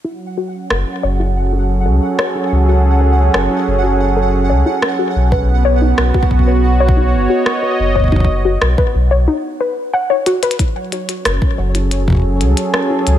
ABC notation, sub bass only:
X:1
M:4/4
L:1/16
Q:1/4=91
K:F#dor
V:1 name="Sub bass" clef=bass
z4 F,,, z F,,,4- F,,, C,, z3 C,,- | C,,4 F,,, z F,,,4- F,,, C,, z3 B,,,- | B,,,4 B,,, z B,,,4- B,,, F,,, z3 F,,,- | F,,,4 B,,, z B,,,2 z8 |
z4 F,,, z F,,,4- F,,, C,, z3 C,, |]